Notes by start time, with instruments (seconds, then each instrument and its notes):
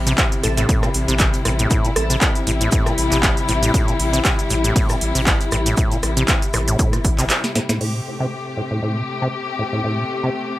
Already playing: analog synth bass A1, string section C3 G3 E4
0.07 acid bass C3, snare, closed hi-hat, cabasa
0.18 kick, snare, clap, closed hi-hat, cabasa, shaker
0.32 closed hi-hat, cabasa
0.43 analog synth bass A1, acid bass A2, synth pluck A4, open hi-hat, shaker
0.57 acid bass A2, synth pluck A4, snare, closed hi-hat, cabasa
0.69 acid bass A2, kick, closed hi-hat, cabasa, shaker
0.83 acid bass A#2, cross-stick, snare, cabasa
0.94 analog synth bass A1, open hi-hat, shaker
1.08 analog synth bass A1, acid bass C3, closed hi-hat, cabasa
1.19 kick, snare, clap, closed hi-hat, cabasa, shaker
1.33 closed hi-hat, cabasa
1.45 analog synth bass A1, acid bass A2, cross-stick, open hi-hat, shaker
1.59 acid bass A2, closed hi-hat, cabasa
1.71 acid bass A2, kick, closed hi-hat, cabasa, shaker
1.85 acid bass A#2, closed hi-hat, cabasa
1.96 analog synth bass A1, synth pluck A4, cross-stick, open hi-hat, shaker
2.10 acid bass C3, synth pluck A4, closed hi-hat, cabasa
2.21 kick, snare, clap, closed hi-hat, cabasa, shaker
2.35 closed hi-hat, cabasa
2.47 analog synth bass A1, acid bass A2, open hi-hat, shaker
2.61 acid bass A2, closed hi-hat, cabasa
2.71 acid bass A2, kick, closed hi-hat, cabasa, shaker
2.86 acid bass A#2, cross-stick, cabasa
2.98 analog synth bass A1, open hi-hat, shaker
3.12 analog synth bass A1, acid bass C3, clap, closed hi-hat, cabasa
3.23 kick, snare, clap, closed hi-hat, cabasa, shaker
3.37 closed hi-hat, cabasa
3.48 analog synth bass A1, acid bass A2, snare, open hi-hat, shaker
3.63 acid bass A2, closed hi-hat, cabasa
3.74 acid bass A2, kick, closed hi-hat, cabasa, shaker
3.88 acid bass A#2, closed hi-hat, cabasa
3.99 analog synth bass A1, open hi-hat
4.13 acid bass C3, snare, closed hi-hat, cabasa
4.25 kick, snare, clap, closed hi-hat, cabasa, shaker
4.39 closed hi-hat, cabasa
4.50 analog synth bass A1, acid bass A2, open hi-hat, shaker
4.64 acid bass A2, closed hi-hat, cabasa
4.76 kick, closed hi-hat, open hi-hat, cabasa
4.89 acid bass A#2, cross-stick, cabasa, shaker
5.01 analog synth bass A1, open hi-hat
5.15 analog synth bass A1, acid bass C3, closed hi-hat, open hi-hat, cabasa
5.27 kick, snare, clap, closed hi-hat, cabasa, shaker
5.40 closed hi-hat, cabasa
5.51 analog synth bass A1, acid bass A2, cross-stick, open hi-hat, shaker
5.66 acid bass A2, closed hi-hat, cabasa
5.77 acid bass A2, kick, closed hi-hat, cabasa, shaker
5.91 acid bass A#2, closed hi-hat, cabasa
6.03 analog synth bass A1, cross-stick, open hi-hat, shaker
6.17 acid bass C3, closed hi-hat, cabasa
6.28 kick, snare, clap, closed hi-hat, cabasa, shaker
6.42 closed hi-hat, cabasa
6.53 analog synth bass A1, acid bass A2, cross-stick, open hi-hat, shaker
6.68 acid bass A2, closed hi-hat, cabasa
6.79 acid bass A2, kick, closed hi-hat, cabasa, shaker
6.93 acid bass A#2, cross-stick, closed hi-hat, cabasa
7.04 analog synth bass A1, kick, open hi-hat, shaker
7.18 analog synth bass A1, acid bass C3, clap, closed hi-hat, cabasa
7.29 snare, clap, closed hi-hat, cabasa, shaker
7.44 snare, closed hi-hat, cabasa
7.55 acid bass A2, snare, open hi-hat
7.69 acid bass A2, snare, closed hi-hat, cabasa
7.81 acid bass A2, string section C3 A3 G4, crash
7.95 acid bass A#2
8.20 acid bass C3
8.57 acid bass A2
8.71 acid bass A2
8.82 acid bass A2
8.96 acid bass A#2
9.22 acid bass C3
9.59 acid bass A2
9.73 acid bass A2
9.84 acid bass A2
9.98 acid bass A#2
10.23 acid bass C3